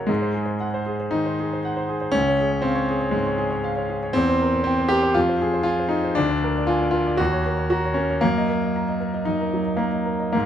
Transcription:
Already playing: F#2 C#3 F#3 A#3 C4 A#4 C#5 F#5
0.07 G#2 G#3
0.22 C5
0.34 G#4
0.45 C5
0.60 F#5
0.74 C5
0.86 G#4
1.00 C5
1.11 D#3 D#4
1.26 C5
1.40 G#4
1.53 C5
1.65 F#5
1.77 C5
1.89 G#4
2.01 C5
2.12 C#2 C#4
2.28 C#5
2.40 G#4
2.62 C4 F5
2.75 C#5
2.89 G#4
3.01 C#5
3.11 G#2 G#3
3.26 C#5
3.38 G#4
3.50 C#5
3.64 F5
3.77 C#5
3.90 G#4
4.03 C#5
4.13 E2 C4
4.29 C5
4.42 A#4
4.53 C5
4.64 C4 G5
4.78 C5
4.88 G4 A#4
5.03 C5
5.14 F2 F4
5.29 C5
5.42 G#4
5.54 C5
5.63 F4 G#5
5.79 C5
5.89 D#4 G#4
6.04 C5
6.15 D2 D4
6.31 D5
6.44 A#4
6.58 D5
6.67 F4 G#5
6.81 D5
6.91 F4 A#4
7.07 D5
7.17 D#2 F#4
7.33 C#5
7.46 A#4
7.59 C#5
7.70 F#4 A#5
7.85 C#5
7.94 C#4 A#4
8.10 C#5
8.21 F#2 A#3
8.38 D#5
8.50 A#4
8.63 D#5
8.76 A#5
8.89 D#5
9.00 A#4
9.14 D#5
9.25 F#2 D#4
9.41 A#4
9.54 F#3
9.66 D#5
9.77 A#3 A#5
9.92 D#5
10.06 A#4
10.20 D#5
10.32 G#2 A#3

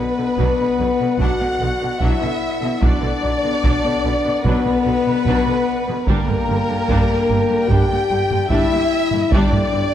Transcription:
Already playing: B3 B4 D5 F#5
0.17 B2 D3 B3
0.37 B1 B2 F#3 D4, taiko
0.59 B2 D3 B3
0.78 B1 B2 D3 F#3
0.99 B2 D3 B3
1.18 B1 B2 F#3 D4 F#4 F#5, taiko
1.40 B2 D3 B3
1.59 B1 B2 D3 F#3
1.81 B2 D3 B3
2.00 B1 B2 F#3 D4 E4 E5, taiko
2.20 B2 D3 B3
2.61 B2 D3 B3
2.80 B1 B2 F#3 B3 D4 B4 D5 F#5, taiko
3.01 B2 D3 B3
3.20 B1 B2 D3 F#3
3.42 B2 D3 B3
3.63 B1 B2 F#3 D4, taiko
3.84 B2 D3 B3
4.04 B1 B2 D3 F#3
4.25 B2 D3 B3
4.44 B1 B2 F#3 B3 D4 B4, taiko
4.65 B2 D3 B3
4.85 B1 B2 D3 F#3
5.06 B2 D3 B3
5.25 B1 B2 F#3 D4, taiko
5.47 B2 D3 B3
5.88 B2 D3 B3
6.07 G1 G2 G3 A#3 D4 G4 A#4 D5 G5, taiko
6.28 G2 D3 A#3, taiko low-mid
6.48 G1 G2 D3 G3
6.69 G2 D3 A#3
6.88 G1 G2 G3 D4, taiko
7.10 G2 D3 A#3
7.29 G1 G2 D3 G3
7.50 G2 D3 A#3
7.69 G1 G2 G3 D4 G4 G5, taiko
7.89 G2 D3 A#3
8.10 G1 G2 D3 G3
8.31 G2 D3 A#3, taiko low-mid
8.50 G1 G2 G3 D4 E4 E5, taiko
8.71 G2 D3 A#3
9.12 G2 D3 A#3, taiko low-mid
9.31 G1 G2 G3 D4 G4 D5 G5, taiko
9.51 G2 D3 A#3, taiko low-mid
9.72 G1 G2 D3 G3

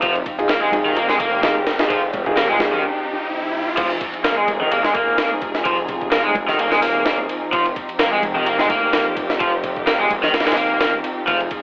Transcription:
Already playing: F3 C4 D#4
0.02 F1 F3 G4, kick, ride, riser
0.15 ride
0.26 kick, ride
0.39 D#4 F4 G#4, ride
0.49 A#3, snare, ride
0.62 G#3
0.72 F1 D#4 F4 G#4, ride, high conga
0.85 D#3, low conga
0.96 A#3, ride
1.09 G#3, snare
1.19 A#3, kick, ride
1.43 F1 A#3 D#4 F4 G#4, snare, ride
1.67 snare, ride
1.79 D#4 F4 G#4, snare, ride
1.90 F3, kick, ride
2.13 kick, ride, high conga
2.26 D#4 F4 G#4, kick
2.37 A#3, snare, ride
2.49 G#3
2.59 F1 D#4 F4 G#4, snare, ride, high conga
2.73 D#3, low conga
3.77 F1 F3 C4 D#4 G#4, kick, crash, ride
3.90 ride
4.01 kick, ride
4.14 ride
4.24 A#3, snare, ride
4.37 G#3
4.48 F1, ride, high conga
4.61 D#3, low conga
4.71 A#3, ride
4.84 G#3, snare
4.95 A#3, kick, ride
5.18 F1 A#3, snare, ride
5.42 kick, ride
5.55 snare
5.65 F3, kick, ride
5.89 kick, ride
6.01 kick
6.12 A#3, snare, ride
6.24 G#3
6.35 F1, kick, ride, high conga
6.48 D#3, snare, low conga
6.59 A#3, ride
6.72 G#3, snare
6.82 D#1 A#3, open hi-hat
7.06 A#3, snare, ride
7.29 ride
7.53 F1 F3 G4, kick, ride
7.66 ride
7.76 kick, ride
7.89 ride
7.99 A#3, snare, ride
8.12 G#3
8.23 F1, ride, high conga
8.35 D#3, low conga
8.46 A#3, ride
8.59 G#3, snare
8.70 A#3, kick, ride
8.93 F1 A#3, snare, ride
9.17 kick, ride
9.30 snare
9.40 F3, kick, ride
9.64 kick, ride
9.76 kick
9.87 A#3, snare, ride
9.99 G#3
10.10 F1, kick, ride, high conga
10.23 D#3, snare, low conga
10.34 A#3, snare, ride
10.40 snare, ride
10.46 G#3, snare, ride
10.52 snare, ride
10.57 D#1 A#3, open hi-hat
10.80 A#3, snare, ride
11.04 ride
11.27 F1 F3 G#4, kick, ride
11.40 ride
11.51 kick, ride

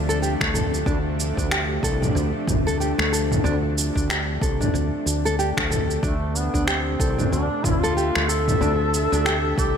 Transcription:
Already playing: D2 C3 F3 A3 D4
0.09 A4, cabasa
0.22 G4, cabasa
0.41 D2 A3, finger snap, kick
0.54 A4, mid tom, cabasa
0.74 cabasa
0.86 D2 D4, kick, cabasa
1.20 cabasa
1.37 D2 D4, kick, cabasa
1.51 G4, finger snap, cabasa
1.83 C2 A4, kick, cabasa
2.02 D4, mid tom, cabasa
2.15 D2, cabasa
2.47 D2, kick, mid tom, cabasa
2.67 A4, cabasa
2.80 G4, cabasa
2.98 D2 A3, finger snap
3.13 A4, cabasa
3.32 mid tom, cabasa
3.44 D2 D4, cabasa
3.78 cabasa
3.95 D2 D4, kick, cabasa
4.09 G4, finger snap, cabasa
4.41 C2 A4, kick, cabasa
4.60 D4, mid tom, cabasa
4.74 D2, cabasa
5.06 D2, cabasa
5.25 A4, cabasa
5.39 G4, cabasa
5.57 D2 A3, finger snap, kick
5.71 A4, mid tom, cabasa
5.91 cabasa
6.03 D2 A3 D4 E5, kick, cabasa
6.35 B3, cabasa
6.54 D2 D4, kick, cabasa
6.67 C4 G4, finger snap, cabasa
7.00 C2 A4, kick, cabasa
7.19 D4, mid tom, cabasa
7.32 D2 D4, cabasa
7.64 D2 F4, kick, mid tom, cabasa
7.72 E4
7.80 F4 A4
7.84 cabasa
7.97 G4, cabasa
8.15 D2 A3, finger snap
8.28 A4, cabasa
8.48 mid tom, cabasa
8.61 D2 D4, cabasa
8.94 cabasa
9.12 D2 D4, cabasa
9.25 G4, finger snap, cabasa
9.57 C2 G4 A4, kick, cabasa

